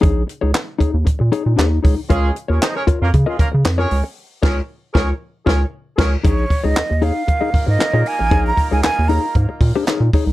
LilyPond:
<<
  \new Staff \with { instrumentName = "Flute" } { \time 4/4 \key bes \minor \tempo 4 = 116 r1 | r1 | r1 | des''8. ees''8. f''4~ f''16 ees''8. aes''8~ |
aes''16 bes''8 aes''16 aes''8 bes''8 r2 | }
  \new Staff \with { instrumentName = "Clean electric guitar" } { \time 4/4 \key bes \minor <ees' aes' des''>16 r8 <ees' aes' des''>16 r8 <ees' aes' des''>16 r8. <ees' aes' des''>16 r16 <ees' aes' des''>8 <ees' aes' des''>16 r16 | <f' bes' des''>16 r8 <f' bes' des''>16 r8 <f' bes' des''>16 r8 <f' bes' ees''>16 r8. <f' bes' des''>16 r8 | r8 <f' bes' des''>8 r8 <f' bes' des''>8 r8 <f' bes' des''>8 r8 <f' bes' des''>8 | <ees' aes' des''>16 r8 <ees' aes' des''>16 r8 <ees' aes' des''>16 r8 <ees' aes' ees''>16 r8. <ees' aes' des''>16 r8 |
<ees' aes' des''>16 r8 <ees' aes' des''>16 r8 <ees' aes' des''>16 r4 <ees' aes' des''>16 <ees' aes' des''>16 r16 <ees' aes' des''>16 r16 | }
  \new Staff \with { instrumentName = "Horn section" } { \time 4/4 \key bes \minor r1 | <aes des' f' aes'>8 r16 <des' aes' bes' des''>16 <ees' aes' c'' ees''>16 <des' aes' bes' des''>16 r16 <bes des' f' bes'>16 r16 <aes des' f' aes'>16 <bes des' f' bes'>16 r8 <des' aes' bes' des''>8 r16 | r8 <des' aes' bes' des''>8 r8 <des' aes' bes' des''>8 r8 <des' aes' bes' des''>8 r8 <des' aes' bes' des''>8 | r2 <bes ees' f' bes'>2~ |
<bes ees' f' bes'>2.~ <bes ees' f' bes'>8 r8 | }
  \new Staff \with { instrumentName = "Analog synth bass" } { \clef bass \time 4/4 \key bes \minor bes,,8 r16 des,16 r8 ees,16 ees,16 bes,16 bes,16 r16 bes,16 ees,8 des,16 r16 | des,8 r16 ees,16 r8 f,16 f,16 des16 r16 des16 des16 f,8 des,16 r16 | r8 des,8 r8 des,8 r8 des,8 r8 des,8 | bes,,8 r16 des,16 ees,16 ees,8 r8. aes,16 aes,16 r16 bes,16 r16 a,,16 |
bes,,8 r16 des,16 ees,16 ees,8 r16 aes,16 r16 bes,16 r8 bes,16 r16 c,16 | }
  \new DrumStaff \with { instrumentName = "Drums" } \drummode { \time 4/4 <hh bd>8 hh8 <hc hh sn>8 <hh bd>8 <hh bd>8 hh8 <hc hh sn>8 <hho bd>8 | <hh bd>8 hh8 <hc hh sn>8 <hh bd>8 <hh bd>8 <hh bd>8 <hc hh sn>8 hho8 | r8 <cymc bd sn>8 r8 <bd sn>8 r8 <bd sn>8 r8 <cymc bd sn>8 | <hh bd>8 <hho bd>8 <hc hh sn>8 hho8 <hh bd>8 <hho bd>8 <hc hh sn>8 hho8 |
<hh bd>8 <hho bd>8 <hc hh sn>8 hho8 <hh bd>8 <hho bd>8 <hc hh sn>8 <hho bd>8 | }
>>